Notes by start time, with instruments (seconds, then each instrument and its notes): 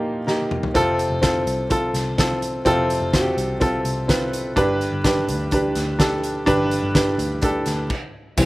Already playing: grand piano A#2 A#3 D#4 F4 G4
0.27 grand piano A#3 D#4 G4, snare
0.51 mid tom
0.63 floor tom
0.74 picked electric bass F1, grand piano C3 C4 F4 A4, kick, closed hi-hat
0.99 closed hi-hat
1.10 picked electric bass F1
1.21 grand piano C4 F4 A4, kick, snare, closed hi-hat
1.46 picked electric bass C2, closed hi-hat
1.70 grand piano C4 F4 A4, kick, closed hi-hat
1.94 picked electric bass C2, snare, closed hi-hat
2.18 grand piano C4 F4 A4, kick, snare, closed hi-hat
2.42 closed hi-hat
2.65 picked electric bass F1, grand piano C3 C4 F4 A4, kick, closed hi-hat
2.90 closed hi-hat
3.01 picked electric bass F1
3.13 grand piano C4 F4 F#4, kick, snare, closed hi-hat
3.20 grand piano G4
3.37 picked electric bass C2, closed hi-hat
3.60 grand piano C4 F4 A4, kick, closed hi-hat
3.85 picked electric bass C2, closed hi-hat
4.08 grand piano C4 F4 B4, kick, snare, closed hi-hat
4.33 closed hi-hat
4.56 picked electric bass G1, grand piano G2 D3 D4 G4 B4, kick, closed hi-hat
4.81 closed hi-hat
4.92 picked electric bass G1
5.04 grand piano D4 G4 B4, kick, snare, closed hi-hat
5.28 picked electric bass D2, closed hi-hat
5.51 grand piano D4 G4 B4, kick, closed hi-hat
5.75 picked electric bass D2, snare, closed hi-hat
5.99 grand piano D4 G4 A4, kick, snare, closed hi-hat
6.24 closed hi-hat
6.46 picked electric bass G1, grand piano G2 D3 D4 G4 B4, kick, closed hi-hat
6.71 closed hi-hat
6.83 picked electric bass G1
6.94 grand piano D4 G4 B4, kick, snare, closed hi-hat
7.18 picked electric bass D2, closed hi-hat
7.42 grand piano D4 G4 A4, kick, closed hi-hat
7.66 picked electric bass D2, snare, closed hi-hat
7.90 kick, crash
8.37 picked electric bass C2, tonewheel organ C3 G3 E4, grand piano E3 G3 C4, kick, crash, tambourine